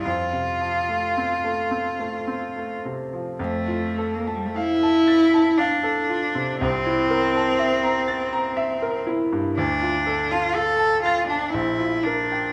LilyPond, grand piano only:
\new Staff \with { instrumentName = "Grand piano" } { \time 3/4 \key f \major \tempo 4 = 59 f,16 c16 f16 a16 c'16 a16 c'16 a16 c'16 a16 c16 f16 | f,16 f'16 a'16 a''16 f''16 a''16 a'''16 a''16 f''16 a'16 f'16 c16 | c,16 e'16 bes'16 a''16 e''16 bes''16 a'''16 bes''16 e''16 bes'16 e'16 g,16 | d,16 f'16 a'16 a''16 f''16 a''16 a'''16 a''16 bes,,16 f'16 bes'16 g''16 | }